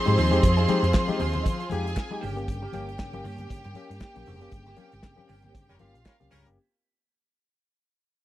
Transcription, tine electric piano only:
0.06 0.18 G#3 medium
0.06 0.18 D#4 medium
0.06 0.18 G4 medium
0.18 0.32 F3 medium
0.31 0.43 G#3 medium
0.31 0.43 D#4 medium
0.31 0.44 G4 medium
0.43 0.57 F3 medium
0.58 0.62 D#4 soft
0.58 0.62 G4 soft
0.68 0.83 G#3 medium
0.68 0.83 D#4 medium
0.68 0.84 G4 medium
0.95 1.09 F3 medium
1.08 1.20 G#3 medium
1.08 1.20 D#4 medium
1.08 1.19 G4 medium
1.21 1.26 D#4 soft
1.21 1.26 G4 soft
1.46 1.60 F3 medium
1.72 1.86 G#3 medium
1.72 1.86 D#4 medium
1.72 1.86 G4 medium
1.87 1.91 D#4 soft
1.87 1.91 G4 soft
2.11 2.23 G#3 medium
2.11 2.23 D#4 medium
2.11 2.23 G4 medium
2.23 2.37 G2 medium
2.23 2.37 C#3 medium
2.36 2.48 A#3 medium
2.36 2.48 C#4 medium
2.36 2.48 G4 medium
2.48 2.62 G2 medium
2.48 2.62 C#3 medium
2.62 2.67 C#4 soft
2.62 2.67 G4 soft
2.74 2.88 A#3 medium
2.74 2.88 C#4 medium
2.74 2.88 G4 medium
3.00 3.14 G2 medium
3.00 3.14 C#3 medium
3.13 3.25 A#3 medium
3.13 3.23 C#4 medium
3.13 3.24 G4 medium
3.25 3.30 C#4 soft
3.25 3.30 G4 soft
3.50 3.65 G2 medium
3.50 3.65 C#3 medium
3.76 3.90 A#3 medium
3.76 3.88 C#4 medium
3.76 3.88 G4 medium
3.89 3.94 C#4 soft
3.89 3.94 G4 soft
4.14 4.26 A#3 medium
4.14 4.27 C#4 medium
4.14 4.27 G4 medium
4.27 4.42 G2 medium
4.27 4.42 C#3 medium
4.41 4.53 A#3 medium
4.41 4.53 C#4 medium
4.41 4.53 G4 medium
4.51 4.66 G2 medium
4.51 4.66 C#3 medium
4.67 4.71 C#4 soft
4.67 4.71 G4 soft
4.77 4.92 A#3 medium
4.77 4.92 C#4 medium
4.77 4.92 G4 medium
5.03 5.18 G2 medium
5.03 5.18 C#3 medium
5.16 5.29 A#3 medium
5.16 5.28 C#4 medium
5.16 5.28 G4 loud
5.29 5.35 C#4 soft
5.29 5.35 G4 soft
5.54 5.69 G2 medium
5.54 5.69 C#3 medium
5.80 5.95 A#3 medium
5.80 5.93 C#4 medium
5.80 5.93 G4 loud
5.94 5.99 C#4 soft
5.94 5.99 G4 soft
6.20 6.32 A#3 medium
6.20 6.32 C#4 medium
6.20 6.32 G4 medium
6.31 6.46 G2 medium
6.31 6.46 C#3 medium
6.46 6.57 A#3 medium
6.46 6.57 C#4 medium
6.46 6.58 G4 medium

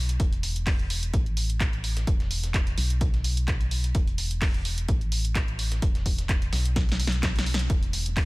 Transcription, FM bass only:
0.00 0.18 B1 medium
0.20 1.11 E1 medium
1.14 2.05 A1 medium
2.07 2.75 E1 medium
2.78 3.93 B1 medium
3.95 4.86 E1 medium
4.89 5.80 A1 medium
5.82 6.50 E1 medium
6.53 7.68 B1 medium
7.70 8.25 E1 medium

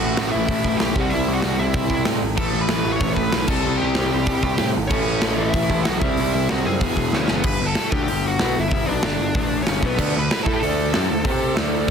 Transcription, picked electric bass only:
0.01 0.14 A1 medium
0.17 0.30 A1 medium
0.34 0.47 A1 loud
0.49 0.62 A1 loud
0.65 0.78 A1 loud
0.81 0.94 B1 loud
0.96 1.09 C2 medium
1.13 1.26 C2 loud
1.28 1.41 C2 medium
1.44 1.57 C2 loud
1.59 1.72 C2 loud
1.75 1.88 C2 loud
1.90 2.04 C2 loud
2.07 2.20 A2 loud
2.22 2.36 G#1 medium
2.53 2.67 A1 medium
2.68 2.82 A1 medium
2.85 2.99 A1 medium
3.01 3.14 A1 loud
3.17 3.30 A1 loud
3.35 3.49 B1 loud
3.49 3.62 C2 medium
3.66 3.79 C2 loud
3.82 3.95 C2 loud
3.98 4.11 C2 loud
4.14 4.26 C2 medium
4.28 4.41 C2 loud
4.43 4.57 C2 loud
4.60 4.73 A2 loud
4.77 4.90 G#1 loud
4.91 5.05 A1 medium
5.07 5.21 A1 loud
5.22 5.36 A1 medium
5.38 5.52 A1 loud
5.54 5.68 A1 loud
5.70 5.84 A1 loud
5.87 6.00 B1 loud
6.02 6.16 C2 medium
6.18 6.32 C2 loud
6.34 6.47 C2 medium
6.51 6.64 C2 medium
6.66 6.80 F#2 loud
6.82 6.95 E1 medium
6.97 7.11 E1 loud
7.13 7.26 D2 loud
7.29 7.42 F#1 medium
7.45 7.59 G1 medium
7.61 7.75 G1 medium
7.92 8.07 D2 loud
8.09 8.38 G1 medium
8.41 8.55 B1 loud
8.58 8.71 G1 medium
8.72 8.86 G1 medium
8.89 9.03 B1 loud
9.05 9.19 G1 medium
9.19 9.34 G1 medium
9.35 9.64 A1 loud
9.68 9.82 G1 loud
9.83 9.97 B1 loud
9.98 10.13 D2 loud
10.16 10.30 D2 medium
10.47 10.61 A2 loud
10.64 10.92 D2 loud
10.96 11.09 F#2 loud
11.11 11.25 D2 medium
11.25 11.55 C3 loud
11.59 11.91 D2 loud

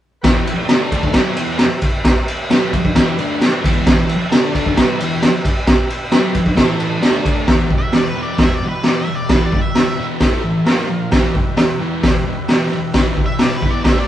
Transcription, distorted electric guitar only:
0.24 0.46 E2 loud
0.24 0.47 B2 loud
0.24 0.47 E3 loud
0.48 muted distorted electric guitar stroke medium
0.69 1.14 D3 medium
0.69 1.14 A3 medium
0.69 1.15 D4 medium
1.14 1.37 B2 loud
1.14 1.37 F#3 loud
1.14 1.37 B3 loud
1.36 1.59 E2 medium
1.36 1.60 B2 medium
1.36 1.60 E3 loud
2.50 2.73 B2 medium
2.50 2.73 F#3 medium
2.50 2.74 B3 loud
2.73 muted distorted electric guitar stroke soft
2.95 3.18 E2 loud
2.95 3.18 B2 loud
2.95 3.18 E3 loud
3.18 3.40 D3 loud
3.18 3.41 A3 medium
3.18 3.41 D4 medium
3.41 muted distorted electric guitar stroke medium
3.65 3.86 E2 loud
3.65 3.87 B2 loud
3.65 3.87 E3 loud
3.87 4.09 E2 loud
3.87 4.09 B2 loud
3.87 4.10 E3 loud
4.10 muted distorted electric guitar stroke medium
4.32 4.77 D3 medium
4.32 4.77 A3 loud
4.32 4.77 D4 loud
4.77 4.99 B2 loud
4.77 4.99 F#3 loud
4.77 5.00 B3 loud
5.00 5.22 E2 loud
5.00 5.22 B2 loud
5.00 5.23 E3 loud
6.12 6.34 B2 medium
6.12 6.35 F#3 loud
6.12 6.35 B3 medium
6.35 muted distorted electric guitar stroke medium
6.55 7.01 A2 loud
6.55 7.02 E3 medium
6.55 7.01 A3 medium
7.01 7.47 D3 medium
7.01 7.47 A3 loud
7.01 7.47 D4 loud
7.47 7.69 E2 medium
7.47 7.69 B2 medium
7.47 7.70 E3 loud
7.70 7.91 E2 medium
7.70 7.91 B2 medium
7.93 8.14 E2 medium
7.93 8.14 B2 medium
8.15 8.37 E2 medium
8.15 8.37 B2 medium
8.15 8.37 E3 medium
8.38 8.59 E2 medium
8.38 8.59 B2 medium
8.63 8.83 E2 medium
8.63 8.83 B2 medium
8.84 9.06 E2 medium
8.84 9.06 B2 medium
8.84 9.07 E3 medium
9.08 9.28 E2 medium
9.08 9.28 B2 medium
9.29 9.51 E2 loud
9.29 9.51 B2 loud
9.29 9.52 E3 loud
9.53 9.73 E2 medium
9.53 9.73 B2 medium
9.75 9.96 E2 medium
9.75 9.96 B2 medium
9.98 10.19 E2 medium
9.98 10.19 B2 medium
9.98 10.20 E3 medium
10.20 10.42 A2 medium
10.20 10.42 E3 medium
10.20 10.43 A3 loud
10.44 10.64 A2 medium
10.44 10.64 E3 medium
10.66 10.88 A#2 loud
10.66 10.88 F3 medium
10.66 10.88 A#3 loud
10.89 11.09 A#2 medium
10.89 11.10 F3 medium
11.12 11.33 E2 medium
11.12 11.33 B2 medium
11.12 11.34 E3 loud
11.34 11.55 E2 medium
11.34 11.55 B2 medium
11.56 11.77 E2 medium
11.56 11.78 B2 medium
11.80 12.01 E2 medium
11.80 12.02 B2 medium
11.80 12.02 E3 medium
12.04 12.24 E2 medium
12.04 12.24 B2 medium
12.27 12.47 E2 medium
12.27 12.47 B2 medium
12.49 12.70 E2 medium
12.49 12.70 B2 loud
12.49 12.71 E3 loud
12.72 12.92 E2 medium
12.72 12.92 B2 medium
12.94 13.16 E2 medium
12.94 13.16 B2 medium
12.94 13.16 E3 loud
13.18 13.38 E2 medium
13.18 13.38 B2 medium
13.41 13.61 E2 medium
13.41 13.61 B2 medium
13.63 13.84 E2 medium
13.63 13.85 B2 medium
13.63 13.85 E3 medium
13.86 14.07 D3 medium
13.86 14.08 A3 medium
13.86 14.08 D4 medium

